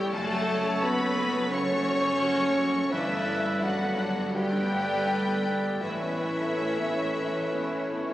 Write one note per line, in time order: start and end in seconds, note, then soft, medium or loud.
0.00 0.17 E2 medium
0.00 0.14 G3 loud
0.00 0.17 A3 medium
0.00 0.14 C#4 medium
0.00 0.17 E4 medium
0.00 0.14 G4 loud
0.00 0.14 A4 medium
0.00 0.10 C#5 medium
0.00 0.17 C#5 medium
0.00 0.10 G5 loud
0.00 0.11 G5 loud
0.13 2.89 F#1 loud
0.13 1.49 F#2 medium
0.13 2.88 F#2 loud
0.13 0.30 F#3 medium
0.13 0.81 A3 loud
0.13 0.30 F#4 medium
0.13 0.83 A4 loud
0.13 1.51 A4 loud
0.13 1.50 C#5 loud
0.13 0.81 A5 loud
0.13 0.84 A5 loud
0.31 0.48 A3 medium
0.31 0.59 F#4 medium
0.31 0.48 A4 medium
0.47 0.66 F#3 medium
0.47 0.66 F#4 medium
0.47 0.75 C#5 medium
0.64 0.93 A3 medium
0.64 0.84 A3 medium
0.64 0.84 A4 medium
0.81 1.00 F#3 medium
0.81 1.51 B3 loud
0.81 1.11 F#4 medium
0.81 1.00 F#4 medium
0.81 1.51 B4 loud
0.81 1.53 B5 loud
0.81 1.54 B5 loud
0.99 1.28 A3 medium
0.99 1.19 A3 medium
0.99 1.18 A4 medium
1.18 1.36 F#3 medium
1.18 1.46 F#4 medium
1.18 1.36 F#4 medium
1.35 1.53 A3 medium
1.35 1.64 A3 medium
1.35 1.53 A4 medium
1.51 1.81 C#3 medium
1.51 1.70 F#3 medium
1.51 2.88 C#4 loud
1.51 1.69 F#4 medium
1.51 2.92 C#5 loud
1.51 2.89 C#5 medium
1.51 2.92 C#6 loud
1.51 2.89 C#6 loud
1.55 2.91 A4 medium
1.70 1.88 A3 medium
1.70 1.99 F#4 medium
1.70 1.88 A4 medium
1.88 2.06 F#3 medium
1.88 2.06 F#4 medium
1.88 2.17 C#5 medium
2.05 2.23 A3 medium
2.05 2.34 A3 medium
2.05 2.23 A4 medium
2.22 2.39 F#3 medium
2.22 2.39 F#4 medium
2.22 2.51 F#4 medium
2.39 2.57 A3 medium
2.39 2.68 A3 medium
2.39 2.58 A4 medium
2.57 2.75 F#3 medium
2.57 2.75 F#4 medium
2.57 2.85 F#4 medium
2.74 2.90 A3 medium
2.74 2.93 A3 medium
2.74 2.92 A4 medium
2.90 5.78 G1 loud
2.90 5.78 G2 loud
2.90 4.31 G2 medium
2.90 3.62 E3 loud
2.90 3.08 A3 loud
2.90 3.08 D4 loud
2.90 3.62 E4 loud
2.90 4.05 A4 loud
2.90 4.04 B4 medium
2.90 3.61 E5 loud
2.90 3.65 E5 loud
3.09 3.26 A3 medium
3.09 3.27 B3 medium
3.09 3.38 D4 medium
3.27 3.43 A3 medium
3.27 3.45 D4 medium
3.27 3.55 B4 medium
3.44 3.60 A3 medium
3.44 3.73 A3 medium
3.44 3.63 B3 medium
3.61 4.35 F#3 loud
3.61 3.78 A3 medium
3.61 3.79 D4 medium
3.61 3.91 D4 medium
3.61 4.35 F#4 medium
3.61 4.35 F#5 loud
3.61 4.37 F#5 medium
3.79 3.96 A3 medium
3.79 4.09 A3 medium
3.79 3.98 B3 medium
3.97 4.14 A3 medium
3.97 4.16 D4 medium
3.97 4.27 D4 medium
4.15 4.32 A3 medium
4.15 4.45 A3 medium
4.15 4.34 B3 medium
4.33 4.63 D3 medium
4.33 5.83 G3 loud
4.33 4.51 A3 medium
4.33 4.51 D4 medium
4.33 5.79 G4 loud
4.33 5.78 A4 medium
4.33 5.79 B4 medium
4.33 5.53 G5 loud
4.33 5.83 G5 loud
4.52 4.70 A3 medium
4.52 4.71 B3 medium
4.52 4.82 D4 medium
4.69 4.88 A3 medium
4.69 4.89 D4 medium
4.69 4.99 B4 medium
4.87 5.17 A3 medium
4.87 5.06 A3 medium
4.87 5.08 B3 medium
5.06 5.24 A3 medium
5.06 5.37 D4 medium
5.06 5.24 D4 medium
5.25 5.55 A3 medium
5.25 5.45 A3 medium
5.25 5.45 B3 medium
5.43 5.62 A3 medium
5.43 5.74 D4 medium
5.43 5.64 D4 medium
5.62 5.82 A3 medium
5.62 5.81 A3 medium
5.62 5.83 B3 medium
5.81 8.13 A1 medium
5.81 7.28 A2 medium
5.81 8.13 A2 medium
5.81 8.13 E3 medium
5.81 6.00 A3 medium
5.81 6.00 C#4 medium
5.81 8.13 E4 medium
5.81 8.13 B4 medium
5.81 8.13 C#5 medium
5.81 8.13 E5 loud
5.81 8.13 E5 medium
6.01 6.21 B3 medium
6.01 6.31 C#4 soft
6.01 6.21 E4 medium
6.19 6.40 A3 medium
6.19 6.39 C#4 medium
6.19 6.50 B4 medium
6.38 6.69 A3 medium
6.38 6.59 B3 medium
6.38 6.59 E4 medium
6.57 6.75 A3 medium
6.57 6.88 C#4 medium
6.57 6.75 C#4 medium
6.75 7.06 A3 medium
6.75 6.96 B3 medium
6.75 6.96 E4 medium
6.94 7.14 A3 medium
6.94 7.25 C#4 medium
6.94 7.15 C#4 medium
7.14 7.44 A3 soft
7.14 7.33 B3 medium
7.14 7.33 E4 medium
7.33 7.63 E3 medium
7.33 7.50 A3 medium
7.33 7.51 C#4 medium
7.52 7.71 B3 medium
7.52 7.82 C#4 medium
7.52 7.71 E4 medium
7.70 7.89 A3 medium
7.70 7.89 C#4 medium
7.70 8.00 B4 soft
7.89 8.13 A3 soft
7.89 8.08 B3 medium
7.89 8.08 E4 medium
8.07 8.13 A3 medium
8.07 8.13 C#4 medium